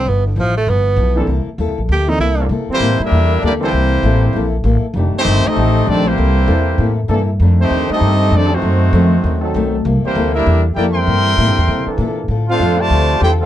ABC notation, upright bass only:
X:1
M:4/4
L:1/8
Q:"Swing" 1/4=196
K:Gdor
V:1 name="Upright bass" clef=bass
G,,,2 A,,,2 G,,,2 =B,,,2 | C,, z (3_E,, C,, B,,, D,,2 C,,2 | [K:C] C, z A,, z E,,2 D,,2 | C,,2 A,,,2 _B,,,2 A,,, z |
F,,, z G,,, z A,,,2 _B,,,2 | C,,2 E,,2 A,,2 G,,2 | F,,2 _E,, z G,,2 F,,2 | ^F,,2 =F,,2 ^D,,2 B,,,2 |
C,, z D,,2 E,,2 F,,2 | G,,2 (3A,, G,, E,, C, z _B,,2 | A,,2 F,,2 D,,2 E,,2 |]